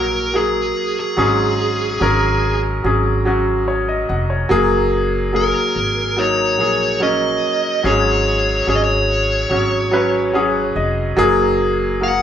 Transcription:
0.00 0.72 A#1 medium
0.00 0.34 F#3 medium
0.00 0.35 A#3 medium
0.00 1.20 F#4 medium
0.00 0.35 G#4 medium
0.00 0.37 A#4 medium
0.34 1.13 F#3 medium
0.34 1.14 A#3 medium
0.34 1.14 G#4 medium
0.34 0.99 G#4 medium
1.00 2.61 G#4 medium
1.17 1.97 G#1 medium
1.17 2.39 G#2 medium
1.17 1.96 F#3 medium
1.17 1.97 C#4 medium
1.17 1.97 G#4 medium
2.00 2.80 G#1 medium
2.00 2.80 F#3 medium
2.00 2.80 C#4 medium
2.00 2.81 A#4 medium
2.84 4.05 G#1 medium
2.84 3.24 F#3 medium
2.84 3.24 C#4 medium
2.84 3.25 G#4 medium
3.25 3.65 F#3 medium
3.25 3.66 C#4 medium
3.25 3.66 F#4 medium
3.68 3.87 C#5 medium
3.89 4.08 D#5 medium
4.09 4.48 F1 medium
4.09 4.29 F#5 medium
4.30 4.69 C#5 soft
4.49 5.51 F#1 medium
4.49 5.29 F#3 medium
4.49 5.30 A#3 medium
4.49 5.30 G#4 medium
5.33 6.13 F#3 medium
5.33 6.13 A#3 medium
5.33 6.14 G#4 medium
5.33 6.21 A#4 medium
5.76 6.59 G#1 medium
6.17 6.57 F#3 medium
6.17 6.57 A#3 soft
6.17 6.58 D#4 medium
6.17 7.02 C#5 medium
6.58 7.39 A#1 medium
6.58 6.98 F#3 medium
6.58 6.99 A#3 soft
6.58 6.99 G#4 medium
7.00 7.80 F#3 medium
7.00 7.80 A#3 medium
7.00 7.81 C#4 medium
7.00 7.86 D#5 medium
7.83 8.63 G#1 medium
7.83 9.05 G#2 soft
7.83 8.63 F#3 medium
7.83 8.63 C#4 medium
7.83 8.64 G#4 medium
7.83 8.68 C#5 medium
8.67 9.47 G#1 medium
8.67 9.46 F#3 medium
8.67 9.47 C#4 soft
8.67 9.47 G#4 medium
8.67 8.75 C#5 medium
8.76 8.82 D#5 medium
8.84 10.73 C#5 medium
9.50 10.72 G#1 medium
9.50 9.90 F#3 medium
9.50 9.90 C#4 soft
9.50 9.91 F#4 medium
9.91 10.31 F#3 medium
9.91 10.32 C#4 medium
9.91 10.33 B4 medium
10.33 11.13 F#3 medium
10.33 11.13 C#4 medium
10.33 11.14 G#4 medium
10.33 10.73 F#5 medium
10.76 11.14 F1 medium
10.76 11.15 D#5 medium
11.17 12.18 F#1 medium
11.17 11.96 F#3 medium
11.17 11.97 A#3 medium
11.17 11.97 G#4 loud
12.00 12.22 F#3 medium
12.00 12.22 A#3 medium
12.00 12.22 F#4 medium
12.00 12.22 F#5 medium

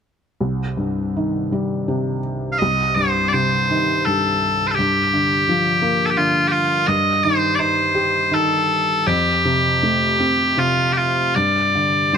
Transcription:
0.41 2.56 C2 soft
0.77 2.19 G2 soft
1.16 2.57 D#3 soft
1.52 2.58 G3 soft
1.88 2.59 C3 soft
2.52 2.58 F5 medium
2.58 4.75 C2 soft
2.58 2.95 D#5 medium
2.95 4.05 G2 soft
2.95 3.28 C5 medium
3.28 3.33 D5 medium
3.33 4.74 C3 soft
3.33 4.05 C5 medium
3.71 4.75 D#3 soft
4.05 4.76 G2 soft
4.05 4.67 A4 medium
4.67 4.75 A4 soft
4.67 4.71 C5 soft
4.75 6.85 G2 soft
4.75 6.06 G4 medium
5.13 6.16 D3 soft
5.49 6.85 F3 soft
5.82 6.85 A#3 soft
6.06 6.10 A4 soft
6.10 6.17 G4 soft
6.17 6.87 D3 soft
6.17 6.48 F4 medium
6.48 6.87 F4 medium
6.48 6.51 G4 medium
6.87 9.03 G2 medium
6.87 7.24 D#5 medium
7.24 8.30 D#3 soft
7.24 7.55 C5 medium
7.55 8.34 C5 medium
7.55 7.59 D5 medium
7.59 9.03 D#4 soft
7.95 9.04 G4 soft
8.31 9.05 D#3 soft
8.31 9.07 A4 medium
9.07 11.31 F2 soft
9.07 10.59 G4 medium
9.45 10.56 C3 soft
9.83 11.32 A3 soft
10.20 11.32 C4 soft
10.57 11.33 C3 soft
10.57 10.93 F4 medium
10.93 10.97 G4 soft
10.97 11.35 F4 soft
11.35 12.18 G2 soft
11.35 12.14 D5 medium
11.75 12.18 D3 soft
12.13 12.18 G3 soft
12.13 12.18 C5 medium

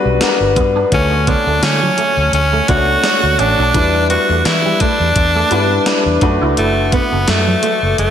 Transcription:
0.00 0.20 G3 medium
0.00 0.21 D4 medium
0.00 0.21 F#4 medium
0.00 0.28 B4 medium
0.05 0.17 B1 medium
0.20 0.76 G3 medium
0.20 0.76 D4 medium
0.20 0.76 F#4 medium
0.20 0.29 A#4 medium
0.20 muted clean electric guitar stroke soft
0.20 snare loud
0.20 closed hi-hat medium
0.28 0.80 B4 medium
0.40 0.58 G1 medium
0.56 0.83 G2 medium
0.56 0.72 B3 medium
0.56 kick medium
0.56 closed hi-hat medium
0.76 0.89 D4 medium
0.91 1.33 D2 loud
0.91 1.98 D3 medium
0.91 1.98 A3 medium
0.91 1.30 C#4 medium
0.91 1.98 F#4 medium
0.91 1.99 C#5 medium
0.91 kick loud
0.91 closed hi-hat medium
1.11 muted clean electric guitar stroke soft
1.27 1.43 B3 medium
1.27 1.65 D4 medium
1.27 kick medium
1.27 closed hi-hat medium
1.46 1.58 D2 medium
1.46 1.60 A3 medium
1.62 1.89 D3 medium
1.62 2.33 C#4 medium
1.62 muted clean electric guitar stroke soft
1.62 snare loud
1.62 closed hi-hat loud
1.82 1.95 F#3 medium
1.98 2.14 A3 medium
1.98 closed hi-hat medium
2.17 2.29 D2 medium
2.33 2.59 D2 medium
2.33 2.70 C#4 medium
2.33 muted clean electric guitar stroke soft
2.33 closed hi-hat medium
2.53 2.66 A3 medium
2.68 2.95 C#2 medium
2.68 2.96 A3 medium
2.68 2.84 B3 medium
2.68 2.96 D4 medium
2.68 3.41 F#4 loud
2.68 2.96 F#4 medium
2.68 2.96 C#5 medium
2.68 kick medium
2.68 closed hi-hat medium
3.03 3.58 A3 medium
3.03 3.59 D4 medium
3.03 3.59 F#4 medium
3.03 3.59 C#5 medium
3.03 muted clean electric guitar stroke soft
3.03 snare loud
3.03 closed hi-hat medium
3.23 3.35 D2 medium
3.39 3.53 A1 medium
3.39 3.55 C#4 medium
3.39 4.09 D4 loud
3.39 closed hi-hat medium
3.58 3.70 B1 medium
3.58 3.72 D4 medium
3.74 4.16 E2 loud
3.74 4.81 G3 medium
3.74 4.81 D4 medium
3.74 4.81 E4 medium
3.74 4.81 B4 medium
3.74 kick loud
3.74 closed hi-hat medium
3.94 muted clean electric guitar stroke soft
4.10 4.26 B3 medium
4.10 4.47 F#4 medium
4.10 closed hi-hat medium
4.29 4.41 E2 medium
4.29 4.42 A3 medium
4.45 4.72 E3 medium
4.45 4.82 E4 medium
4.45 muted clean electric guitar stroke soft
4.45 snare loud
4.45 closed hi-hat loud
4.65 4.78 G3 medium
4.80 4.96 A3 medium
4.80 6.22 D4 medium
4.80 kick medium
4.80 closed hi-hat medium
5.00 5.12 E2 medium
5.16 5.42 E2 medium
5.16 muted clean electric guitar stroke soft
5.16 kick medium
5.16 closed hi-hat medium
5.35 5.48 A3 medium
5.50 5.77 G2 medium
5.50 5.78 G3 medium
5.50 5.67 B3 medium
5.50 5.78 D4 medium
5.50 5.79 E4 medium
5.50 5.79 B4 medium
5.50 closed hi-hat medium
5.85 6.21 G3 medium
5.85 6.20 D4 medium
5.85 6.22 E4 medium
5.85 6.21 B4 medium
5.85 muted clean electric guitar stroke soft
5.85 snare loud
5.85 closed hi-hat medium
6.06 6.18 E2 medium
6.21 6.36 F#2 medium
6.21 7.35 A3 medium
6.21 7.35 D4 medium
6.21 6.37 D4 medium
6.21 7.35 F#4 medium
6.21 7.36 B4 medium
6.21 kick loud
6.21 closed hi-hat medium
6.41 6.53 C#2 medium
6.41 6.54 E4 medium
6.57 6.98 F#1 loud
6.57 6.95 A3 medium
6.57 closed hi-hat medium
6.77 muted clean electric guitar stroke soft
6.92 7.08 B3 medium
6.92 7.31 B3 medium
6.92 kick medium
6.92 closed hi-hat medium
7.12 7.24 F#1 medium
7.12 7.25 A3 medium
7.28 7.54 F#2 loud
7.28 7.98 A3 medium
7.28 muted clean electric guitar stroke soft
7.28 snare loud
7.28 closed hi-hat loud
7.47 7.60 F#3 medium
7.63 7.78 A3 medium
7.63 closed hi-hat medium
7.82 7.94 F#1 medium
7.98 8.10 F#1 medium
7.98 8.10 A3 loud
7.98 muted clean electric guitar stroke soft
7.98 closed hi-hat medium

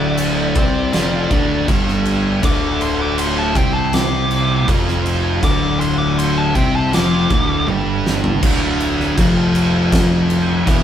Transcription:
0.00 0.52 D1 loud
0.00 0.55 D2 loud
0.00 0.55 D3 loud
0.00 1.66 D5 loud
0.17 crash medium
0.55 0.91 C2 loud
0.55 0.93 C3 medium
0.55 0.93 C4 medium
0.55 kick loud
0.55 crash medium
0.93 1.29 F1 medium
0.93 1.30 F2 medium
0.93 1.30 F3 loud
0.93 snare loud
0.93 crash medium
1.31 1.66 D1 medium
1.31 1.67 D2 loud
1.31 1.68 D3 loud
1.31 kick loud
1.31 crash medium
1.68 2.40 G1 loud
1.68 2.42 G2 loud
1.68 2.43 G3 loud
1.68 kick loud
1.68 crash medium
1.88 snare soft
2.05 crash medium
2.43 3.52 D1 medium
2.43 3.54 D2 loud
2.43 3.55 D3 loud
2.43 2.81 D6 loud
2.43 kick loud
2.43 crash medium
2.81 3.01 C6 loud
2.81 crash medium
3.01 3.18 D6 loud
3.18 3.37 C6 loud
3.18 crash medium
3.39 3.56 A5 medium
3.55 4.64 C2 loud
3.55 4.68 C3 loud
3.55 4.70 C4 loud
3.55 3.73 G5 medium
3.55 kick loud
3.55 crash medium
3.74 3.93 A5 loud
3.93 4.67 D6 loud
3.93 snare loud
3.93 crash medium
4.31 crash medium
4.68 5.40 F1 loud
4.68 5.42 F2 loud
4.68 5.43 F3 loud
4.68 kick loud
4.68 crash medium
4.88 snare soft
5.06 crash medium
5.42 6.52 D1 loud
5.42 6.54 D2 loud
5.42 6.55 D3 loud
5.42 5.79 D6 loud
5.42 kick loud
5.42 crash medium
5.80 5.98 C6 medium
5.80 crash medium
5.98 6.18 D6 loud
6.18 6.36 C6 medium
6.18 crash medium
6.38 6.55 A5 medium
6.55 6.90 C2 loud
6.55 6.92 C3 medium
6.55 6.92 C4 medium
6.55 6.74 G5 medium
6.55 kick loud
6.55 crash medium
6.76 6.93 A5 medium
6.93 7.29 F1 loud
6.93 7.29 F2 medium
6.93 7.30 F3 loud
6.93 7.66 D6 loud
6.93 snare loud
6.93 crash medium
7.30 7.65 D1 loud
7.30 7.67 D2 loud
7.30 7.68 D3 loud
7.30 kick loud
7.30 crash medium
7.68 8.40 G1 medium
7.68 8.42 G2 loud
7.68 8.42 G3 loud
7.68 high tom medium
8.06 snare medium
8.24 floor tom loud
8.42 9.13 D1 loud
8.42 9.16 D2 loud
8.42 9.17 D3 loud
8.42 kick loud
8.42 crash loud
8.80 crash medium
9.00 snare soft
9.17 10.63 F1 loud
9.17 10.66 F2 medium
9.17 10.66 F3 loud
9.17 kick loud
9.17 crash loud
9.55 crash medium
9.92 kick loud
9.92 snare loud
9.92 crash medium
10.30 crash medium
10.66 10.83 E1 loud
10.66 10.83 E2 loud
10.66 10.83 E3 loud
10.66 kick loud
10.66 crash loud

